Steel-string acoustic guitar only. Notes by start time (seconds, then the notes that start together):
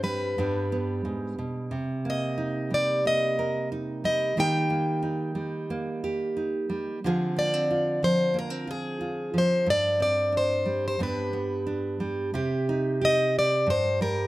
0.04 B4
2.10 D#5
2.74 D5
3.07 D#5
4.05 D#5
4.40 G5
7.39 D5
8.04 C5
8.39 A#4
8.71 G#4
9.38 C5
9.70 D5
10.02 D5
10.37 C5
10.88 C5
11.03 B4
13.05 D#5
13.39 D5
13.70 C5
14.02 A#4